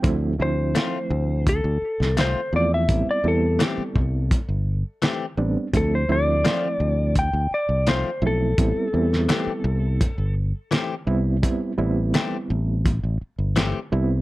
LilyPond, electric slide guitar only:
\new Staff \with { instrumentName = "Electric slide guitar" } { \time 4/4 \key a \minor \tempo 4 = 84 r8 c''4. a'4 c''8 d''16 e''16~ | e''16 d''16 a'8 r2. | a'16 c''16 d''4. g''8 d''8 c''8 a'8~ | a'2~ a'8 r4. |
r1 | }